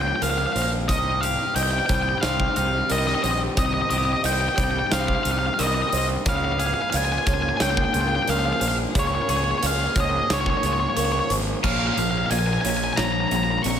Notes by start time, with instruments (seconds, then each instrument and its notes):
Already playing: fingered electric bass C#2, clean electric guitar F3 A#3 F4 G#4, string section F3 A#3 C#4 G#4, felt piano C#5
0.01 lead electric guitar G5
0.08 lead electric guitar G5
0.16 lead electric guitar G5
0.22 fingered electric bass C#2, clean electric guitar F3, felt piano A#4, lead electric guitar F5, closed hi-hat
0.30 lead electric guitar F5
0.38 lead electric guitar F5
0.46 lead electric guitar F5
0.53 fingered electric bass A#1, clean electric guitar A#3, felt piano C5, lead electric guitar F5, closed hi-hat
0.62 lead electric guitar F5
0.88 fingered electric bass C2, clean electric guitar C3, string section D#3 G3 C4 G4, felt piano C5, lead electric guitar D#5, kick, closed hi-hat
1.21 clean electric guitar G4, lead electric guitar F5, closed hi-hat
1.55 fingered electric bass C2, clean electric guitar D#4, felt piano D#5, lead electric guitar G5, closed hi-hat
1.63 lead electric guitar G5
1.71 lead electric guitar G5
1.79 lead electric guitar G5
1.86 fingered electric bass C2, clean electric guitar G3, felt piano C5, lead electric guitar G5, kick, closed hi-hat
1.94 lead electric guitar G5
2.02 lead electric guitar G5
2.09 lead electric guitar G5
2.18 lead electric guitar F5 G5
2.23 fingered electric bass C2, clean electric guitar C4, felt piano C5, snare, closed hi-hat
2.40 kick
2.56 fingered electric bass C2, clean electric guitar D#4, lead electric guitar F5, closed hi-hat
2.90 fingered electric bass C2, clean electric guitar G3, felt piano A#4, lead electric guitar D#5, closed hi-hat
2.99 lead electric guitar D#5
3.07 lead electric guitar D#5, snare
3.15 lead electric guitar D#5
3.23 fingered electric bass A#1, clean electric guitar C4, felt piano C5, lead electric guitar D#5, closed hi-hat
3.31 lead electric guitar D#5
3.57 fingered electric bass C2, clean electric guitar C3, felt piano C5, lead electric guitar D#5, kick, closed hi-hat
3.66 lead electric guitar D#5
3.74 lead electric guitar D#5
3.82 lead electric guitar D#5
3.90 fingered electric bass C2, clean electric guitar G4, lead electric guitar D#5, closed hi-hat
3.98 lead electric guitar D#5
4.05 lead electric guitar D#5
4.13 lead electric guitar D#5
4.23 fingered electric bass C2, clean electric guitar D#4, felt piano D#5, lead electric guitar G5, closed hi-hat
4.33 lead electric guitar G5
4.41 lead electric guitar G5
4.49 lead electric guitar G5
4.56 fingered electric bass C2, clean electric guitar G3, felt piano C5, lead electric guitar G5, kick, closed hi-hat
4.64 lead electric guitar G5
4.71 lead electric guitar G5
4.79 lead electric guitar G5
4.87 felt piano C5, lead electric guitar G5
4.92 fingered electric bass C2, clean electric guitar C4, lead electric guitar F5, snare, closed hi-hat
5.00 lead electric guitar F5
5.08 lead electric guitar F5, kick
5.15 lead electric guitar F5
5.23 fingered electric bass C2, clean electric guitar D#4, lead electric guitar F5, closed hi-hat
5.32 lead electric guitar F5
5.39 lead electric guitar F5
5.46 lead electric guitar F5
5.54 lead electric guitar F5
5.58 fingered electric bass C2, clean electric guitar G3, felt piano A#4, lead electric guitar D#5, closed hi-hat
5.67 lead electric guitar D#5
5.75 lead electric guitar D#5
5.82 lead electric guitar D#5
5.90 fingered electric bass C2, clean electric guitar C4, felt piano C5, lead electric guitar D#5, closed hi-hat
5.98 lead electric guitar D#5
6.26 fingered electric bass C#2, clean electric guitar C#3, string section F3 A#3 C#4 G#4, felt piano C#5, lead electric guitar F5, kick, closed hi-hat
6.36 lead electric guitar F5
6.45 lead electric guitar F5
6.52 lead electric guitar F5
6.59 clean electric guitar G#4, lead electric guitar F5, closed hi-hat
6.66 lead electric guitar F5
6.74 lead electric guitar F5
6.82 lead electric guitar F5
6.90 fingered electric bass C#2, clean electric guitar F4, lead electric guitar F5, felt piano F5, closed hi-hat
6.97 lead electric guitar G#5
7.05 lead electric guitar G#5
7.12 lead electric guitar G#5
7.18 lead electric guitar G#5
7.27 fingered electric bass C#2, clean electric guitar F3, felt piano C#5, lead electric guitar G#5, kick, closed hi-hat
7.34 lead electric guitar G#5
7.42 lead electric guitar G#5
7.49 lead electric guitar G#5
7.57 fingered electric bass C#2, clean electric guitar A#3, felt piano C#5, lead electric guitar G#5, snare, closed hi-hat
7.62 lead electric guitar G5
7.70 lead electric guitar G5
7.77 lead electric guitar G5, kick
7.85 lead electric guitar G5
7.94 fingered electric bass C#2, clean electric guitar F4, lead electric guitar G5, closed hi-hat
8.01 lead electric guitar G5
8.08 lead electric guitar G5
8.15 lead electric guitar G5
8.22 lead electric guitar G5
8.28 fingered electric bass C#2, clean electric guitar F3, felt piano A#4, lead electric guitar F5, closed hi-hat
8.39 lead electric guitar F5
8.45 lead electric guitar F5
8.53 lead electric guitar F5
8.60 fingered electric bass A#1, clean electric guitar A#3, felt piano C5, lead electric guitar F5, closed hi-hat
8.68 lead electric guitar F5
8.95 fingered electric bass C#2, clean electric guitar C#3, felt piano C#5, kick, closed hi-hat
8.99 lead electric guitar C#5
9.07 lead electric guitar C#5
9.15 lead electric guitar C#5
9.22 lead electric guitar C#5
9.28 fingered electric bass C#2, clean electric guitar G#4, lead electric guitar C#5, closed hi-hat
9.37 lead electric guitar C#5
9.44 lead electric guitar C#5
9.51 lead electric guitar C#5
9.58 lead electric guitar C#5
9.62 fingered electric bass C#2, clean electric guitar F4, felt piano F5, lead electric guitar F5, closed hi-hat
9.96 fingered electric bass C#2, clean electric guitar F3, felt piano C#5, kick, closed hi-hat
10.00 lead electric guitar D#5
10.30 fingered electric bass C#2, clean electric guitar A#3, felt piano C#5, lead electric guitar C#5, snare, closed hi-hat
10.41 lead electric guitar C#5
10.46 lead electric guitar C#5, kick
10.57 lead electric guitar C#5
10.63 fingered electric bass C#2, clean electric guitar F4, lead electric guitar C#5, closed hi-hat
10.73 lead electric guitar C#5
10.80 lead electric guitar C#5
10.90 lead electric guitar C#5
10.96 fingered electric bass C#2, clean electric guitar F3, felt piano A#4, lead electric guitar C#5, closed hi-hat
11.05 lead electric guitar C#5
11.12 lead electric guitar C#5
11.20 lead electric guitar C#5
11.30 fingered electric bass G#1, clean electric guitar A#3, felt piano C5, closed hi-hat
11.63 fingered electric bass A#1, overdriven electric guitar A#2 F3 A#3, clean electric guitar A#2, string section C#3 F3 A#3 A#4, felt piano C#5, lead electric guitar F5, kick, crash
11.72 lead electric guitar F5
11.79 lead electric guitar F5
11.87 lead electric guitar F5
11.94 fingered electric bass A#1, clean electric guitar F3, lead electric guitar F5, closed hi-hat
11.98 overdriven electric guitar A#2 F3
12.02 lead electric guitar F5
12.11 lead electric guitar F5
12.18 lead electric guitar F5
12.26 lead electric guitar F5
12.30 fingered electric bass A#1, overdriven electric guitar A#2 F3, clean electric guitar A#3, felt piano F5, lead electric guitar G#5, closed hi-hat
12.39 lead electric guitar G#5
12.46 lead electric guitar G#5
12.53 lead electric guitar G#5
12.61 fingered electric bass A#1, clean electric guitar C#4, felt piano C#5, lead electric guitar G#5, closed hi-hat
12.65 overdriven electric guitar A#2 F3
12.70 lead electric guitar G#5
12.77 lead electric guitar G#5
12.84 lead electric guitar G#5
12.93 lead electric guitar G#5 A#5
12.97 fingered electric bass A#1, overdriven electric guitar A#2 F3, clean electric guitar F3, felt piano C#5, snare, closed hi-hat
13.04 lead electric guitar A#5
13.12 lead electric guitar A#5
13.20 lead electric guitar A#5
13.28 fingered electric bass A#1, overdriven electric guitar A#2 F3, clean electric guitar A#3, lead electric guitar A#5, closed hi-hat
13.36 lead electric guitar A#5
13.43 lead electric guitar A#5
13.51 lead electric guitar A#5
13.58 lead electric guitar A#5
13.63 fingered electric bass A#1, overdriven electric guitar A#2 F3, clean electric guitar F3, felt piano C4, lead electric guitar C#6, closed hi-hat
13.71 lead electric guitar C#6